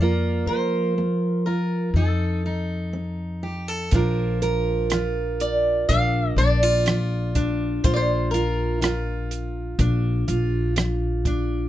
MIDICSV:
0, 0, Header, 1, 5, 480
1, 0, Start_track
1, 0, Tempo, 985222
1, 1911, Time_signature, 4, 2, 24, 8
1, 2870, Tempo, 974026
1, 5726, End_track
2, 0, Start_track
2, 0, Title_t, "Steel-string acoustic guitar"
2, 0, Program_c, 0, 25
2, 0, Note_on_c, 0, 74, 64
2, 229, Note_off_c, 0, 74, 0
2, 231, Note_on_c, 0, 72, 68
2, 710, Note_on_c, 0, 70, 50
2, 720, Note_off_c, 0, 72, 0
2, 954, Note_off_c, 0, 70, 0
2, 960, Note_on_c, 0, 69, 54
2, 1659, Note_off_c, 0, 69, 0
2, 2637, Note_on_c, 0, 74, 61
2, 2857, Note_off_c, 0, 74, 0
2, 2868, Note_on_c, 0, 77, 85
2, 3108, Note_off_c, 0, 77, 0
2, 3110, Note_on_c, 0, 74, 78
2, 3813, Note_off_c, 0, 74, 0
2, 3831, Note_on_c, 0, 72, 77
2, 3867, Note_off_c, 0, 72, 0
2, 3878, Note_on_c, 0, 74, 71
2, 3891, Note_on_c, 0, 72, 82
2, 3906, Note_off_c, 0, 74, 0
2, 4060, Note_off_c, 0, 72, 0
2, 4061, Note_on_c, 0, 70, 65
2, 4767, Note_off_c, 0, 70, 0
2, 5726, End_track
3, 0, Start_track
3, 0, Title_t, "Steel-string acoustic guitar"
3, 0, Program_c, 1, 25
3, 3, Note_on_c, 1, 53, 57
3, 7, Note_on_c, 1, 58, 46
3, 9, Note_on_c, 1, 65, 46
3, 13, Note_on_c, 1, 70, 52
3, 232, Note_off_c, 1, 70, 0
3, 237, Note_on_c, 1, 70, 55
3, 424, Note_off_c, 1, 53, 0
3, 471, Note_off_c, 1, 58, 0
3, 477, Note_on_c, 1, 58, 42
3, 710, Note_off_c, 1, 65, 0
3, 716, Note_on_c, 1, 65, 45
3, 902, Note_off_c, 1, 58, 0
3, 920, Note_off_c, 1, 70, 0
3, 921, Note_off_c, 1, 65, 0
3, 953, Note_on_c, 1, 53, 47
3, 956, Note_on_c, 1, 63, 45
3, 1192, Note_off_c, 1, 63, 0
3, 1197, Note_on_c, 1, 63, 47
3, 1384, Note_off_c, 1, 53, 0
3, 1428, Note_on_c, 1, 60, 44
3, 1671, Note_on_c, 1, 67, 49
3, 1793, Note_off_c, 1, 67, 0
3, 1793, Note_on_c, 1, 69, 45
3, 1863, Note_off_c, 1, 60, 0
3, 1888, Note_off_c, 1, 63, 0
3, 1912, Note_off_c, 1, 69, 0
3, 1916, Note_on_c, 1, 46, 59
3, 1920, Note_on_c, 1, 53, 46
3, 1921, Note_on_c, 1, 62, 51
3, 1924, Note_on_c, 1, 65, 46
3, 1926, Note_on_c, 1, 70, 53
3, 2151, Note_off_c, 1, 70, 0
3, 2153, Note_on_c, 1, 70, 56
3, 2345, Note_off_c, 1, 46, 0
3, 2395, Note_off_c, 1, 53, 0
3, 2397, Note_on_c, 1, 53, 48
3, 2400, Note_off_c, 1, 65, 0
3, 2402, Note_on_c, 1, 65, 46
3, 2825, Note_off_c, 1, 53, 0
3, 2872, Note_on_c, 1, 46, 49
3, 2873, Note_off_c, 1, 62, 0
3, 2875, Note_on_c, 1, 62, 43
3, 3108, Note_off_c, 1, 65, 0
3, 3110, Note_off_c, 1, 62, 0
3, 3110, Note_on_c, 1, 62, 51
3, 3233, Note_off_c, 1, 62, 0
3, 3233, Note_on_c, 1, 65, 38
3, 3305, Note_off_c, 1, 46, 0
3, 3353, Note_on_c, 1, 53, 47
3, 3591, Note_on_c, 1, 62, 52
3, 3785, Note_off_c, 1, 53, 0
3, 3829, Note_off_c, 1, 65, 0
3, 3833, Note_on_c, 1, 46, 56
3, 3835, Note_on_c, 1, 65, 49
3, 3869, Note_off_c, 1, 70, 0
3, 4071, Note_off_c, 1, 65, 0
3, 4077, Note_on_c, 1, 65, 57
3, 4264, Note_off_c, 1, 46, 0
3, 4309, Note_off_c, 1, 65, 0
3, 4310, Note_on_c, 1, 53, 53
3, 4315, Note_on_c, 1, 65, 47
3, 4743, Note_off_c, 1, 53, 0
3, 4792, Note_on_c, 1, 46, 57
3, 4794, Note_off_c, 1, 62, 0
3, 4796, Note_on_c, 1, 62, 50
3, 5026, Note_off_c, 1, 65, 0
3, 5032, Note_on_c, 1, 65, 54
3, 5224, Note_off_c, 1, 46, 0
3, 5274, Note_on_c, 1, 53, 54
3, 5519, Note_off_c, 1, 62, 0
3, 5521, Note_on_c, 1, 62, 47
3, 5705, Note_off_c, 1, 53, 0
3, 5723, Note_off_c, 1, 65, 0
3, 5726, Note_off_c, 1, 62, 0
3, 5726, End_track
4, 0, Start_track
4, 0, Title_t, "Upright bass"
4, 0, Program_c, 2, 32
4, 0, Note_on_c, 2, 41, 72
4, 224, Note_on_c, 2, 53, 63
4, 232, Note_off_c, 2, 41, 0
4, 923, Note_off_c, 2, 53, 0
4, 944, Note_on_c, 2, 41, 74
4, 1892, Note_off_c, 2, 41, 0
4, 1910, Note_on_c, 2, 34, 71
4, 2850, Note_off_c, 2, 34, 0
4, 2870, Note_on_c, 2, 34, 77
4, 3094, Note_off_c, 2, 34, 0
4, 3104, Note_on_c, 2, 34, 79
4, 3809, Note_off_c, 2, 34, 0
4, 3832, Note_on_c, 2, 34, 83
4, 4772, Note_off_c, 2, 34, 0
4, 4790, Note_on_c, 2, 34, 87
4, 5013, Note_off_c, 2, 34, 0
4, 5035, Note_on_c, 2, 34, 78
4, 5726, Note_off_c, 2, 34, 0
4, 5726, End_track
5, 0, Start_track
5, 0, Title_t, "Drums"
5, 1907, Note_on_c, 9, 42, 52
5, 1912, Note_on_c, 9, 36, 76
5, 1955, Note_off_c, 9, 42, 0
5, 1961, Note_off_c, 9, 36, 0
5, 2153, Note_on_c, 9, 42, 41
5, 2202, Note_off_c, 9, 42, 0
5, 2387, Note_on_c, 9, 42, 55
5, 2396, Note_on_c, 9, 37, 68
5, 2436, Note_off_c, 9, 42, 0
5, 2444, Note_off_c, 9, 37, 0
5, 2632, Note_on_c, 9, 42, 43
5, 2680, Note_off_c, 9, 42, 0
5, 2871, Note_on_c, 9, 36, 55
5, 2872, Note_on_c, 9, 42, 50
5, 2920, Note_off_c, 9, 36, 0
5, 2921, Note_off_c, 9, 42, 0
5, 3111, Note_on_c, 9, 42, 42
5, 3160, Note_off_c, 9, 42, 0
5, 3348, Note_on_c, 9, 42, 62
5, 3356, Note_on_c, 9, 37, 78
5, 3397, Note_off_c, 9, 42, 0
5, 3405, Note_off_c, 9, 37, 0
5, 3590, Note_on_c, 9, 42, 48
5, 3592, Note_on_c, 9, 36, 54
5, 3639, Note_off_c, 9, 42, 0
5, 3641, Note_off_c, 9, 36, 0
5, 3830, Note_on_c, 9, 42, 60
5, 3833, Note_on_c, 9, 36, 82
5, 3880, Note_off_c, 9, 42, 0
5, 3882, Note_off_c, 9, 36, 0
5, 4078, Note_on_c, 9, 42, 42
5, 4127, Note_off_c, 9, 42, 0
5, 4315, Note_on_c, 9, 42, 59
5, 4323, Note_on_c, 9, 37, 78
5, 4364, Note_off_c, 9, 42, 0
5, 4372, Note_off_c, 9, 37, 0
5, 4555, Note_on_c, 9, 42, 44
5, 4605, Note_off_c, 9, 42, 0
5, 4791, Note_on_c, 9, 42, 54
5, 4792, Note_on_c, 9, 36, 56
5, 4841, Note_off_c, 9, 36, 0
5, 4841, Note_off_c, 9, 42, 0
5, 5033, Note_on_c, 9, 42, 42
5, 5082, Note_off_c, 9, 42, 0
5, 5271, Note_on_c, 9, 42, 60
5, 5279, Note_on_c, 9, 37, 80
5, 5320, Note_off_c, 9, 42, 0
5, 5328, Note_off_c, 9, 37, 0
5, 5512, Note_on_c, 9, 36, 56
5, 5513, Note_on_c, 9, 42, 37
5, 5561, Note_off_c, 9, 36, 0
5, 5563, Note_off_c, 9, 42, 0
5, 5726, End_track
0, 0, End_of_file